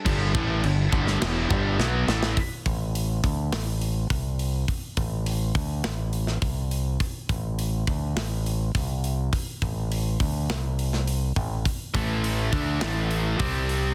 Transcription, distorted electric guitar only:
\new Staff \with { instrumentName = "Distorted electric guitar" } { \clef bass \time 4/4 \key g \lydian \tempo 4 = 103 <g, d g>8 <a, e a>8 <g, d>8 <g, d g>8 <e, b, e>8 <g, d g>8 <b, fis b>8 <a, e a>8 | r1 | r1 | r1 |
r1 | r8 <a, e a>4 <d a d'>8 <a, e a>4 <c g c'>4 | }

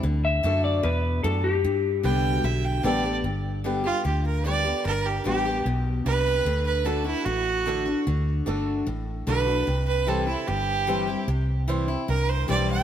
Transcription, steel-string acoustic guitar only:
\new Staff \with { instrumentName = "Steel-string acoustic guitar" } { \time 4/4 \key g \major \tempo 4 = 149 << { r4 <d a d' fis'>4 r2 | r4 <d g b g'>4 r4 <d g b g'>8 <b g'>8 | r4 <d g b g'>8 <b g'>8 r4 <d g b g'>8 <b g'>8 | r4 <d g b g'>8 <b g'>8 r2 |
r4 <d a d' fis'>8 <d' fis'>8 r4 <d a d' fis'>8 <d' fis'>8 | r4 <d a d' fis'>4 r4 <d a d' fis'>8 <d' fis'>8 | r4 <e g c' e'>8 <c' e'>8 r4 <e g c' e'>8 <c' e'>8 | r4 <e g c' e'>8 <c' e'>8 r4 <e g c' e'>4 | } \\ { d2 b,4 a,4 | g,2 d2 | g,2 d2 | g,2 b,4 c4 |
d2 a,2 | d2 a,2 | c2 g,2 | c2 g,2 | } >> }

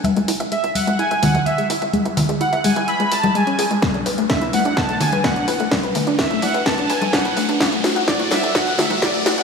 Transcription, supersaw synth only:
\new Staff \with { instrumentName = "Supersaw synth" } { \time 4/4 \key b \dorian \tempo 4 = 127 r4 e''8 fis''8 gis''8 fis''8 e''8 r8 | r4 fis''8 gis''8 b''8 a''8 gis''8 r8 | r4 e''8 fis''8 a''8 gis''8 fis''8 r8 | r4 e''8 fis''8 a''8 gis''8 fis''8 r8 |
r4 d''8 e''8 fis''8 e''8 d''8 r8 | }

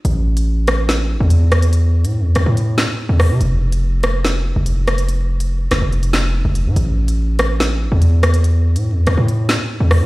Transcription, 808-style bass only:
\new Staff \with { instrumentName = "808-style bass" } { \clef bass \time 4/4 \key c \major \tempo 4 = 143 a,,2~ a,,8. e,4~ e,16~ | e,8. a,16. e,16. e,16 a,4 r8 e,8 c16 | f,,2~ f,,8. f,,4~ f,,16~ | f,,4. f,,16 f,,4. f,,8 a,16 |
a,,2~ a,,8. e,4~ e,16~ | e,8. a,16. e,16. e,16 a,4 r8 e,8 c16 | }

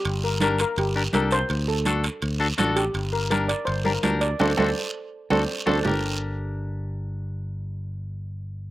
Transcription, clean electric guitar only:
\new Staff \with { instrumentName = "Clean electric guitar" } { \time 4/4 \key g \minor \tempo 4 = 165 r4 <d' g' bes'>8 r4 <d' g' bes'>8 <d' g' a'>8 r8 | r4 <d' fis' a'>8 r4 <d' fis' a'>8 <d' fis' a'>8 r8 | r4 <d' g' bes'>8 r4 <d' g' bes'>8 <d' g' bes'>8 r8 | <d' fis' a'>8 <d' fis' a'>8 r4. <d' fis' a'>8 r8 <d' fis' a'>8 |
<d' g' bes'>1~ | <d' g' bes'>1 | }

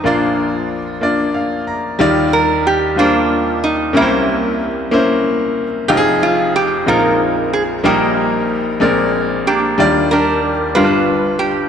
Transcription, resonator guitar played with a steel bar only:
\new Staff \with { instrumentName = "Resonator guitar played with a steel bar" } { \time 6/8 \key ees \major \tempo 4. = 62 << { f'2~ f'8 r8 | r8 bes'8 g'8 f'4 ees'8 | e'4 r2 | r8 f'8 g'8 bes'4 aes'8 |
g'2 r8 g'8~ | g'8 bes'4 b'4 g'8 | } \\ { <bes d'>2~ <bes d'>8 r8 | r4. <bes d'>4. | <g bes>4. r4. | r4. <ees' f'>4. |
<bes ees'>2 r8 <bes d'>8~ | <bes d'>8 <d' g'>4 <d' f'>4. | } >> }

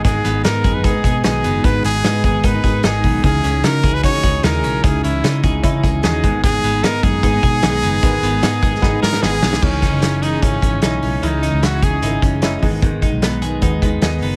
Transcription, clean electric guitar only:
\new Staff \with { instrumentName = "Clean electric guitar" } { \time 4/4 \key gis \minor \tempo 4 = 150 gis,8 b8 dis'8 gis'8 dis'8 gis'8 dis'8 b8 | gis,8 b8 dis'8 gis'8 dis'8 gis'8 dis'8 b8 | cis8 cis'8 dis'8 gis'8 dis'8 gis'8 dis'8 cis'8 | cis8 cis'8 dis'8 gis'8 dis'8 gis'8 dis'8 gis,8 |
gis,8 b8 dis'8 gis'8 dis'8 gis'8 dis'8 b8 | gis,8 b8 dis'8 gis'8 dis'8 gis'8 dis'8 b8 | cis8 dis'8 cis'8 gis'8 dis'8 cis'8 dis'8 cis'8 | cis8 dis'8 cis'8 gis'8 dis'8 cis'8 dis'8 gis,8 |
gis,8 dis'8 b8 gis'8 dis'8 b8 dis'8 b8 | }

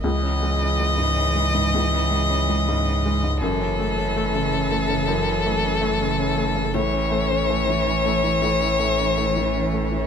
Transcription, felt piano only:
\new Staff \with { instrumentName = "Felt piano" } { \time 3/4 \key cis \minor \tempo 4 = 107 \tuplet 3/2 { cis,8 cis'8 gis8 cis'8 gis8 gis,8 cis'8 gis8 gis,8 } | \tuplet 3/2 { cis,8 cis'8 gis8 cis'8 gis8 gis,8 cis'8 gis8 gis,8 } | \tuplet 3/2 { fis,8 cis'8 a8 cis'8 a8 cis8 cis'8 a8 cis8 } | \tuplet 3/2 { fis,8 cis'8 a8 cis'8 a8 cis8 cis'8 a8 cis8 } |
\tuplet 3/2 { a,8 cis'8 a8 cis'8 a8 e8 cis'8 a8 e8 } | \tuplet 3/2 { a,8 cis'8 a8 cis'8 a8 e8 cis'8 a8 e8 } | }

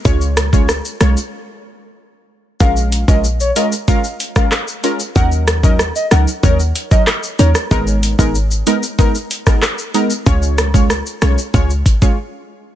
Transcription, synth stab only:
\new Staff \with { instrumentName = "Synth stab" } { \time 4/4 \key des \mixolydian \tempo 4 = 94 <aes des' f' des''>8. <aes des' f' des''>16 r8 <aes des' f' des''>16 r2 r16 | <aes des' f' bes'>8. <aes des' f' bes'>16 r8 <aes des' f' bes'>16 r16 <aes des' f' bes'>16 r8 <aes des' f' bes'>16 r8 <aes des' f' bes'>16 r16 | <ges des' ees' bes'>8. <ges des' ees' bes'>16 r8 <ges des' ees' bes'>16 r16 <ges des' ees' bes'>16 r8 <ges des' ees' bes'>16 r8 <ges des' ees' bes'>16 r16 | <aes ces' ees' bes'>8. <aes ces' ees' bes'>16 r8 <aes ces' ees' bes'>16 r16 <aes ces' ees' bes'>16 r8 <aes ces' ees' bes'>16 r8 <aes ces' ees' bes'>16 r16 |
<aes des' f' des''>8. <aes des' f' des''>16 r8 <aes des' f' des''>16 r16 <aes des' f' des''>16 r8 <aes des' f' des''>16 r4 | }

